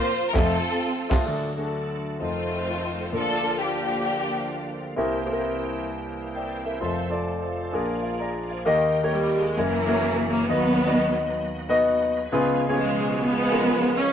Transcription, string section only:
Already playing: F4 C5
0.29 A#4
0.36 C4 F4 A4
2.21 A3 C4 F4
3.14 D4 F4 A4
3.59 A#3 D4 G4
9.12 G3
9.40 G#3
9.58 C#3 E3 A#3
10.30 A#3
10.48 D#3 F#3 B3
12.76 B2 F3 G#3
13.22 F3 G#3 B3
13.98 C#4

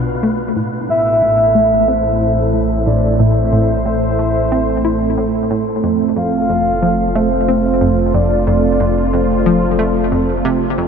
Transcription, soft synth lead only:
0.90 E5
1.88 C5
2.87 D5
3.20 E5
3.86 E5
6.17 F5
7.16 C5
8.14 D5
8.47 D5
9.13 C5

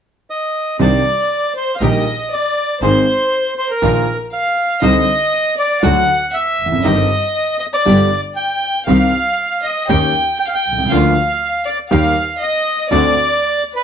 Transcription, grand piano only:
0.79 C2 C3 D#3 C4 D4 G4
1.81 A#1 A#2 D#3 G3 A#3 G4
2.82 G#1 G#2 D#3 G#3 C4 G#4
3.82 A#1 A#2 D#3 F3 A#3 F4
4.82 C2 C3 D3 G3 C4 D#4
5.83 D2 D3 F#3 A3 F#4
6.66 E2
6.72 F2
6.78 F#2
6.84 G1 G2 D#3 G3 C4 G4
7.85 G1 G2 D3 G3 B3 G4
8.87 C2 C3 D#3 G3 C4 G4
9.89 D#2 D#3 A#3 C#4 G4
10.72 B1
10.78 C2
10.86 C#2
10.91 D2 D3 F3 A#3 F4
11.91 D#2 D#3 G3 A#3 G4
12.91 D2 D3 A3 C4 F#4

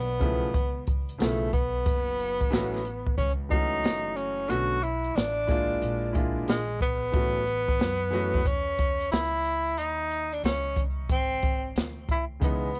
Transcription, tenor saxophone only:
Already playing: B3
1.20 A3
1.53 B3
3.18 C#4
3.51 D#4
4.17 C#4
4.50 F#4
4.83 E4
5.16 D4
6.49 G#3
6.82 B3
8.47 C#4
9.12 E4
9.78 D#4
10.33 D4
10.45 C#4
11.11 C4
12.11 E4
12.45 B3

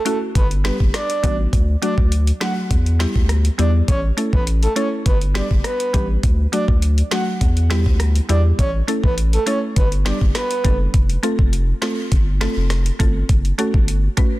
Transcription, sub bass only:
0.35 G1
0.80 F#1
1.24 A1
1.53 D2
1.98 D2
2.71 E2
3.15 D2
3.59 E2
3.88 A1
4.33 A1
5.06 G1
5.51 F#1
5.94 A1
6.23 D2
6.68 D2
7.41 E2
7.86 D2
8.29 E2
8.59 A1
9.04 A1
9.76 G1
10.21 F#1
10.65 F#1
10.94 F1
11.39 F1
12.12 G1
12.57 F1
13.00 G1
13.29 F#1
13.74 G1

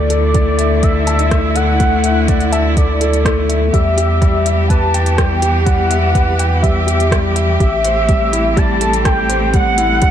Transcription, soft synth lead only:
Already playing: D5
0.83 E5
1.56 F#5
2.52 E5
2.77 D5
3.72 E5
4.68 A5
5.17 G5
5.64 F#5
6.62 E5
7.62 E5
8.57 A5
9.06 G5
9.55 F#5

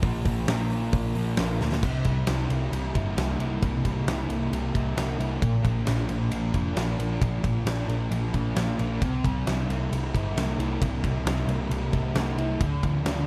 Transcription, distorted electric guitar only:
0.02 A#2 F3 A#3
0.48 A#2 F3 A#3
1.15 F3 A#3
1.38 A#2 F3 A#3
1.61 F3 A#3
1.84 C3
2.06 G3
2.29 E4
2.51 A#3
2.72 G3
2.95 E4
3.17 A#3
3.40 E4
3.62 C3
3.85 G3
4.08 E4
4.31 A#3
4.53 G3
4.74 E4
4.96 A#3
5.19 E4
5.41 A#2
5.63 F3
5.85 D4
6.09 A#3
6.31 F3
6.53 D4
6.75 A#3
6.98 D4
7.20 A#2
7.43 F3
7.66 D4
7.88 A#3
8.11 F3
8.33 D4
8.55 A#3
8.79 D4
9.01 C3
9.25 G3
9.47 E4
9.70 A#3
9.92 G3
10.14 E4
10.37 A#3
10.59 E4
10.81 C3
11.04 G3
11.26 E4
11.49 A#3
11.71 G3
11.92 E4
12.15 A#3
12.38 E4
12.61 D3
12.84 F3
13.06 D4

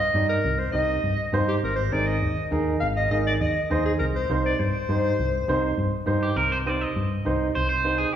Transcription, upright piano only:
0.14 D#4 G4 D5
0.73 D#4 G4 D#5
1.32 D#4 G4 C5
1.92 D#4 G#4 A#4
2.51 D#4 G#4 A#4
3.11 D#4 G#4 A#4
3.70 D#4 G#4 C5
4.29 D#4 G4 C5
4.89 D#4 G4 C5
5.48 D#4 G4 C5
6.06 D#4 G4 C5
6.66 D#4 G4 C5
7.25 D#4 G4 C5
7.84 D#4 G4 C5

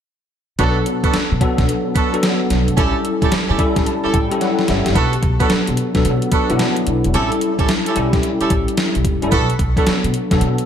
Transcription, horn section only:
0.59 B3 D4 F#4 A4
1.03 B3 D4 F#4 A4
1.95 B3 D4 F#4 A4
2.77 C#4 E4 G4 A4
3.22 C#4 E4 G4 A4
3.49 C#4 E4 G4 A4
4.04 C#4 E4 G4 A4
4.95 B3 D4 F#4 A4
5.40 B3 D4 F#4 A4
6.32 B3 D4 F#4 A4
7.14 C#4 E4 G4 A4
7.59 C#4 E4 G4 A4
7.86 C#4 E4 G4 A4
8.40 C#4 E4 G4 A4
9.32 B3 D4 F#4 A4
9.77 B3 D4 F#4 A4

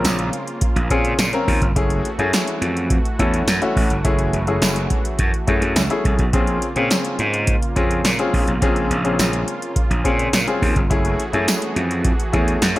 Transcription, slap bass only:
0.05 A#1
0.76 A#1
0.91 A#2
1.19 A#2
1.48 D#2
1.62 G1
1.76 F#1
2.19 F#2
2.61 F2
3.19 E2
3.47 F#2
3.76 A1
3.90 G1
4.05 F#1
4.33 F#1
4.62 F#1
5.19 F#2
5.48 F#2
5.62 F#2
5.76 C#2
6.05 C2
6.19 B1
6.33 A#1
6.76 A#2
7.19 G#2
7.76 F2
8.05 A#2
8.34 A#1
8.47 B1
8.62 A#1
8.90 A#1
9.19 A#1
9.90 A#1
10.05 A#2
10.33 A#2
10.62 D#2
10.76 G1
10.91 F#1
11.33 F#2
11.76 F2
12.34 E2
12.62 F#2

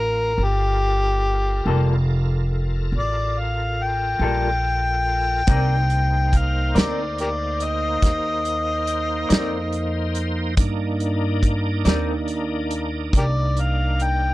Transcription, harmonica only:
Already playing: A#4
0.44 G4
2.98 D5
3.39 F5
3.83 G5
6.37 F5
6.79 D5
7.21 G4 A#4 D5
7.64 D#5
13.18 G4 A#4 D5
13.61 F5
14.03 G5

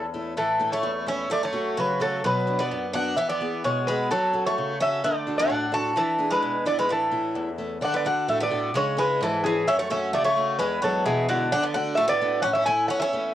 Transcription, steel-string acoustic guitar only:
Already playing: E2
0.14 A3 C#4 E4
0.37 A2
0.59 A3 C#4 E4
0.83 E2
1.06 A3 C#4 E4
1.30 F#2
1.53 A3 C#4 F#4
1.78 C#3
2.00 A3 C#4 F#4
2.24 B2
2.47 B3 D4 F#4
2.71 F#2
2.93 B3 D4 F#4
3.17 E3
3.41 B3 E4 G#4
3.64 B2
3.88 B3 E4 G#4
4.10 F#3
4.33 C#4 F#4 A4
4.58 C#3
4.80 C#4 F#4 A4
5.04 D3
5.27 D4 F#4 A4
5.50 A2
5.72 D4 F#4 A4
5.96 E3
6.18 D4 E4 G#4
6.42 B2
6.65 D4 E4 G#4
6.89 A2
7.11 A3 C#4 E4
7.35 E2
7.58 A3 C#4 E4
7.81 D3
8.05 A3 D4 F#4
8.28 A2
8.51 A3 D4 F#4
8.74 C#3
8.97 G#3 C#4 E4
9.21 G#2
9.44 G#3 C#4 E4
9.68 F#2
9.90 A3 C#4 F#4
10.14 C#3
10.37 A3 C#4 F#4
10.60 E2
10.84 G#3 B3 E4
11.06 B2
11.29 G#3 B3 E4
11.53 D3
11.74 A3 D4 F#4
11.98 A2
12.21 A3 D4 F#4
12.44 A2
12.67 A3 C#4 E4
12.90 E2
13.13 A3 C#4 E4

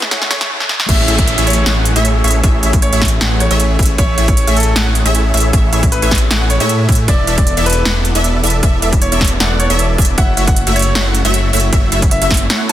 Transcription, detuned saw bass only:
0.89 A1
1.08 A1
1.38 A1
1.66 A1
1.96 A1
2.24 A1
2.44 A1
2.63 A1
2.93 A1
3.21 A1
3.51 A1
3.79 A1
3.98 A1
4.18 A1
4.47 A1
4.76 A1
5.05 A1
5.34 A1
5.53 A1
5.73 A1
6.02 A1
6.31 A1
6.60 A2
6.89 A2
7.08 E1
7.27 E1
7.57 E1
7.86 E1
8.15 E1
8.44 E1
8.63 E1
8.82 E1
9.12 E1
9.40 E1
9.70 E1
9.98 E1
10.18 F#1
10.37 F#1
10.67 F#1
10.95 F#1
11.25 F#1
11.53 F#1
11.73 F#1
11.92 F#1
12.22 F#1

